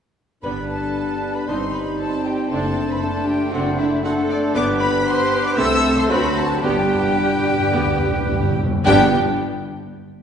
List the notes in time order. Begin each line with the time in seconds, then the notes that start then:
0.43 G1 G2 G3 B3 D4 B4 B5
0.69 A4 A5
1.35 B4 B5
1.47 G1 G3 C4 D#4 C5 C6
1.74 B4 B5
2.00 C4 A4 A5
2.26 G4 G5
2.51 F#1 A3 C4 D4 A4 C5 A5
2.90 B4 B5
3.02 A3 D4 A4 C5 A5
3.27 G4 G5
3.53 F#1 A3 C4 D4 F#4 C5 F#5
3.79 E4 E5
4.04 A3 D4 F#4 A4 C5 F#5
4.30 D4 D5
4.55 G1 B3 D4 G4 B4 D5 D6
4.79 B4 B5
5.05 G4 C5 C6
5.44 D5 D6
5.57 C2 A3 C4 A4 C5 E5 E6
5.97 C5 C6
6.10 D2 F#3 C4 D4 F#4 B4 C5 B5
6.37 A4 A5
6.63 G1 G2 G3 B3 D4 G4 B4 G5
6.71 G2
6.79 G2
6.95 G2
7.03 G2
7.11 G2
7.18 G2
7.27 G2
7.35 G2
7.43 G2
7.51 G2
7.59 G2
7.67 G2
7.74 D2 G2 B3 G4
7.84 G2
7.91 G2
7.99 G2
8.08 G2
8.15 G2
8.24 G2
8.32 G2
8.40 G2
8.47 G2
8.56 G2
8.63 G2
8.71 G2
8.85 G1 G2 G3 B3 D4 G4 B4 G5